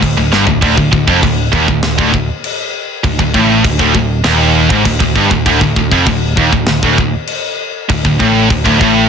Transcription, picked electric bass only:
0.02 0.16 D1 medium
0.17 0.31 D1 medium
0.32 0.46 G1 medium
0.48 0.61 D1 medium
0.62 0.76 D1 loud
0.77 0.91 D1 medium
0.93 1.07 D1 medium
1.08 1.22 F1 medium
1.23 1.51 D1 medium
1.53 1.67 D#1 loud
1.69 1.82 D1 medium
1.84 1.97 D1 medium
1.98 2.12 D1 medium
2.14 2.28 D1 medium
3.04 3.18 D1 medium
3.19 3.33 D1 medium
3.34 3.62 A1 medium
3.65 3.79 D1 medium
3.79 3.93 D1 medium
3.94 4.23 D1 medium
4.25 4.67 D#1 medium
4.70 4.84 G#1 loud
4.85 5.00 D1 medium
5.00 5.15 D1 medium
5.15 5.30 G1 loud
5.31 5.45 D1 medium
5.46 5.60 D1 medium
5.61 5.75 D1 medium
5.76 5.90 D1 medium
5.91 6.06 F1 loud
6.07 6.35 D1 medium
6.37 6.51 D#1 loud
6.53 6.67 D1 medium
6.68 6.82 D1 medium
6.83 6.97 D1 medium
6.98 7.12 D1 medium
7.90 8.04 D1 medium
8.05 8.19 D1 medium
8.20 8.48 A1 medium
8.50 8.64 D1 medium
8.66 8.79 D1 medium
8.81 9.09 A1 medium

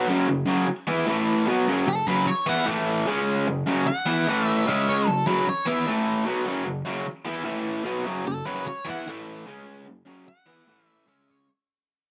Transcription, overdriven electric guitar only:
0.08 0.26 F#2 medium
0.08 0.27 C#3 loud
0.08 0.27 F#3 loud
0.28 0.43 F#2 medium
0.28 0.43 C#3 medium
0.46 0.65 F#2 medium
0.46 0.66 C#3 loud
0.46 0.66 F#3 loud
0.68 muted overdriven electric guitar stroke medium
0.87 1.06 E3 loud
0.87 1.06 B3 loud
0.87 1.06 E4 loud
1.06 1.45 A2 loud
1.06 1.46 E3 loud
1.06 1.47 A3 loud
1.47 1.66 B2 medium
1.47 1.66 F#3 medium
1.47 1.67 B3 loud
1.67 1.86 F#2 loud
1.67 1.86 C#3 loud
1.67 1.87 F#3 loud
1.87 2.02 F#2 medium
1.87 2.02 C#3 medium
2.07 2.25 F#2 medium
2.07 2.27 C#3 medium
2.07 2.27 F#3 loud
2.27 muted overdriven electric guitar stroke medium
2.46 2.65 E3 loud
2.46 2.66 B3 loud
2.46 2.66 E4 loud
2.66 3.05 A2 loud
2.66 3.05 E3 loud
2.66 3.06 A3 loud
3.07 3.45 C#3 medium
3.07 3.46 G#3 loud
3.07 3.46 C#4 medium
3.48 3.63 F#2 medium
3.48 3.63 C#3 medium
3.67 3.86 F#2 medium
3.67 3.86 C#3 medium
3.67 3.87 F#3 medium
3.88 muted overdriven electric guitar stroke medium
4.06 4.25 E3 medium
4.06 4.26 B3 loud
4.06 4.26 E4 loud
4.28 4.66 A2 loud
4.28 4.66 E3 loud
4.28 4.67 A3 loud
4.66 5.05 C#3 loud
4.66 5.06 G#3 medium
4.66 5.06 C#4 loud
5.08 5.22 F#2 medium
5.08 5.23 C#3 medium
5.27 5.45 F#2 loud
5.27 5.46 C#3 medium
5.27 5.46 F#3 loud
5.48 muted overdriven electric guitar stroke medium
5.66 5.85 E3 medium
5.66 5.86 B3 loud
5.66 5.86 E4 loud
5.87 6.25 A2 loud
5.87 6.26 E3 loud
5.87 6.26 A3 loud
6.26 6.45 B2 medium
6.26 6.45 F#3 loud
6.26 6.46 B3 medium
6.45 6.64 F#2 medium
6.45 6.64 C#3 loud
6.45 6.66 F#3 loud
6.65 6.81 F#2 medium
6.65 6.81 C#3 medium
6.85 7.05 F#2 medium
6.85 7.05 C#3 loud
6.85 7.05 F#3 loud
7.07 muted overdriven electric guitar stroke medium
7.25 7.44 E3 loud
7.25 7.45 B3 loud
7.25 7.45 E4 loud
7.45 7.84 A2 medium
7.45 7.85 E3 loud
7.45 7.85 A3 loud
7.84 8.04 B2 medium
7.84 8.04 F#3 loud
7.84 8.05 B3 loud
8.04 8.24 F#2 loud
8.04 8.24 C#3 loud
8.04 8.25 F#3 loud
8.25 8.41 F#2 medium
8.25 8.41 C#3 medium
8.46 8.65 F#2 medium
8.46 8.65 C#3 loud
8.46 8.66 F#3 loud
8.66 muted overdriven electric guitar stroke medium
8.85 9.04 E3 loud
8.85 9.05 B3 loud
8.85 9.05 E4 loud
9.06 9.45 A2 medium
9.06 9.45 E3 loud
9.06 9.46 A3 loud
9.46 9.85 C#3 medium
9.46 9.85 G#3 loud
9.46 9.86 C#4 loud
9.87 10.02 F#2 medium
9.87 10.02 C#3 medium
10.06 10.25 F#2 medium
10.06 10.25 C#3 loud
10.06 10.26 F#3 loud
10.27 muted overdriven electric guitar stroke medium
10.46 10.65 E3 loud
10.46 10.66 B3 loud
10.46 10.66 E4 loud
10.66 11.05 A2 medium
10.66 11.06 E3 loud
10.66 11.06 A3 loud
11.06 11.45 C#3 loud
11.06 11.46 G#3 medium
11.06 11.46 C#4 loud

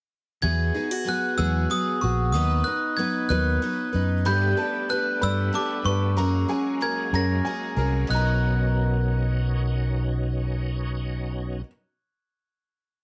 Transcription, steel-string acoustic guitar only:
0.42 1.00 E3 medium
0.75 0.91 D#4 soft
0.91 2.02 F#4 soft
1.08 2.98 B3 medium
1.38 1.96 G#3 medium
1.38 2.35 G#4 medium
2.03 2.31 F#4 soft
2.34 2.92 D#3 medium
2.67 3.94 D#4 medium
2.99 6.18 B3 medium
3.31 3.88 F#3 medium
3.31 4.23 B4 medium
3.95 4.27 D#4 medium

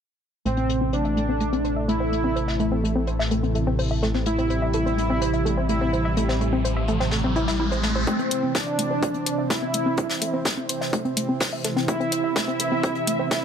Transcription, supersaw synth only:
0.46 0.89 C4 medium
0.93 1.79 D4 loud
1.88 2.74 E4 loud
4.26 4.70 E4 loud
4.74 5.60 E4 loud
5.69 6.55 E4 loud
8.07 8.51 C4 loud
8.55 9.41 D4 loud
9.50 10.36 E4 loud
11.88 12.32 E4 loud
12.36 13.22 E4 loud
13.31 13.45 E4 loud

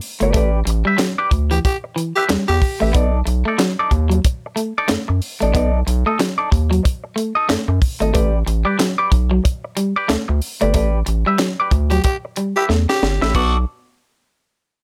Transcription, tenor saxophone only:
1.50 1.59 G4 medium
1.65 1.77 G4 medium
2.15 2.24 G4 medium
2.48 2.92 G4 loud
11.90 11.99 G4 medium
12.04 12.17 G4 medium
12.56 12.64 G4 medium
12.89 13.32 G4 loud
13.35 13.57 F#4 medium

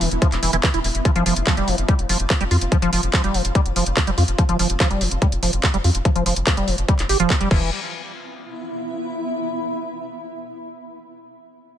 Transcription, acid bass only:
0.01 0.09 E3 medium
0.22 0.27 F3 medium
0.43 0.51 E3 medium
0.53 0.56 E3 loud
0.64 0.69 E3 loud
0.74 0.79 E4 medium
1.05 1.11 F3 medium
1.16 1.24 F3 loud
1.26 1.34 F3 medium
1.47 1.55 F3 medium
1.57 1.69 G3 medium
1.68 1.76 F3 medium
1.89 1.94 G3 medium
2.09 2.18 F3 medium
2.30 2.33 F3 loud
2.41 2.44 G3 loud
2.51 2.57 F4 medium
2.72 2.77 F3 medium
2.82 2.90 F3 loud
2.93 3.01 F3 medium
3.14 3.22 F3 medium
3.24 3.36 G3 medium
3.34 3.43 F3 medium
3.55 3.61 G3 medium
3.76 3.84 F3 medium
3.97 4.00 F3 loud
4.07 4.11 G3 loud
4.18 4.23 F4 medium
4.38 4.44 F3 medium
4.49 4.57 F3 loud
4.59 4.68 F3 medium
4.80 4.88 F3 medium
4.91 5.02 G3 medium
5.01 5.09 F3 medium
5.22 5.27 G3 medium
5.43 5.51 F3 medium
5.63 5.67 F3 loud
5.74 5.77 G3 loud
5.84 5.90 F4 medium
6.05 6.11 F3 medium
6.16 6.24 F3 loud
6.26 6.34 F3 medium
6.47 6.55 F3 medium
6.57 6.69 G3 medium
6.68 6.76 F3 medium
6.88 6.94 G3 medium
7.09 7.18 G4 medium
7.20 7.32 F3 loud
7.30 7.36 C4 medium
7.41 7.49 G3 loud
7.51 7.70 E3 medium

